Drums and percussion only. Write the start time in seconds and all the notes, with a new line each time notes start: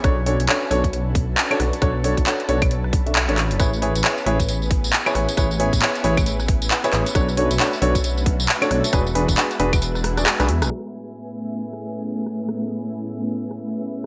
0.04 kick, cross-stick, closed hi-hat
0.26 open hi-hat
0.40 closed hi-hat
0.49 clap
0.71 open hi-hat
0.84 kick, closed hi-hat
0.93 closed hi-hat
1.15 kick, open hi-hat
1.38 clap
1.51 closed hi-hat, claves
1.60 cross-stick, open hi-hat
1.73 closed hi-hat
1.82 kick, cross-stick, closed hi-hat
2.04 open hi-hat
2.17 kick, closed hi-hat
2.27 clap
2.40 closed hi-hat
2.49 open hi-hat
2.62 kick, closed hi-hat, claves
2.71 closed hi-hat
2.84 cross-stick
2.93 kick, open hi-hat
3.07 closed hi-hat
3.15 clap
3.29 closed hi-hat
3.38 cross-stick, clap, open hi-hat
3.51 closed hi-hat
3.60 kick, cross-stick, closed hi-hat, tambourine
3.73 tambourine
3.82 open hi-hat
3.96 closed hi-hat, tambourine
4.04 clap, tambourine
4.18 tambourine
4.26 open hi-hat
4.40 kick, closed hi-hat, tambourine
4.49 closed hi-hat, tambourine
4.62 tambourine
4.71 kick, open hi-hat
4.84 tambourine
4.93 clap, tambourine
5.06 closed hi-hat, tambourine, claves
5.15 cross-stick, open hi-hat
5.29 closed hi-hat, tambourine
5.37 kick, cross-stick, closed hi-hat, tambourine
5.51 tambourine
5.60 open hi-hat
5.73 kick, closed hi-hat, tambourine
5.82 clap, tambourine
5.95 closed hi-hat, tambourine
6.04 open hi-hat
6.17 kick, closed hi-hat, tambourine, claves
6.26 closed hi-hat, tambourine
6.40 cross-stick, tambourine
6.48 kick, open hi-hat
6.62 closed hi-hat, tambourine
6.71 clap, tambourine
6.84 closed hi-hat, tambourine
6.93 cross-stick, clap, open hi-hat
7.06 closed hi-hat, tambourine
7.15 kick, cross-stick, closed hi-hat, tambourine
7.29 tambourine
7.37 open hi-hat
7.51 closed hi-hat, tambourine
7.60 clap, tambourine
7.73 tambourine
7.82 open hi-hat
7.95 kick, closed hi-hat, tambourine
8.04 closed hi-hat, tambourine
8.17 tambourine
8.26 kick, open hi-hat
8.40 tambourine
8.49 clap, tambourine
8.62 closed hi-hat, tambourine, claves
8.71 cross-stick, open hi-hat
8.84 closed hi-hat, tambourine
8.93 kick, cross-stick, closed hi-hat, tambourine
9.07 tambourine
9.15 open hi-hat
9.28 kick, closed hi-hat, tambourine
9.38 clap, tambourine
9.51 closed hi-hat, tambourine
9.60 open hi-hat
9.73 kick, closed hi-hat, tambourine, claves
9.82 closed hi-hat, tambourine
9.95 cross-stick, tambourine
10.04 cross-stick, open hi-hat
10.17 cross-stick, closed hi-hat, tambourine
10.26 cross-stick, clap, tambourine
10.40 cross-stick, closed hi-hat, tambourine
10.49 open hi-hat
10.62 cross-stick, closed hi-hat, tambourine
10.71 cross-stick
11.06 tambourine
11.15 tambourine
11.29 tambourine
11.51 tambourine
11.60 tambourine
11.73 cross-stick, tambourine
11.95 tambourine
12.04 tambourine
12.18 tambourine
12.26 cross-stick
12.40 tambourine
12.49 cross-stick, tambourine
12.62 tambourine
12.84 tambourine
12.93 tambourine
13.06 tambourine
13.29 tambourine
13.38 tambourine
13.51 cross-stick, tambourine
13.73 tambourine
13.82 tambourine
13.95 tambourine